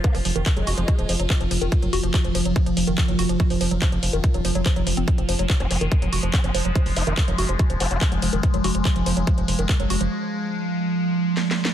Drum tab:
HH |x--o--o--x--x--x--o--x--x--x--o--x--x--x--o--x--|x--x--o--x--x--x--o--x--x--x--o--x--x--x--o--x--|x--o--o--x--x--x--o--x--x--x--o--x--x--x--o--x--|x--x--o--x--x--x--o--x--x--x--o--x--x--x--o--x--|
CP |------------x-----------------------x-----------|------------x-----------------------x-----------|------------x-----------------------x-----------|------------x-----------------------x-----------|
SD |------------------------------------------------|------------------------------------------------|------------------------------------------------|------------------------------------------------|
BD |o-----------o-----------o-----------o-----------|o-----------o-----------o-----------o-----------|o-----------o-----------o-----------o-----------|o-----------o-----------o-----------o-----------|

HH |x--o--o--x--x--x--o--x--x--x--o--x--x--x--o--x--|x--x--o--x--x--x--o--x--x--x--o--x--x--x--o--x--|------------------------------------------------|
CP |------------x-----------------------x-----------|------------x-----------------------x-----------|------------------------------------------------|
SD |------------------------------------------------|------------------------------------------------|------------------------------------o---o---o---|
BD |o-----------o-----------o-----------o-----------|o-----------o-----------o-----------o-----------|------------------------------------------------|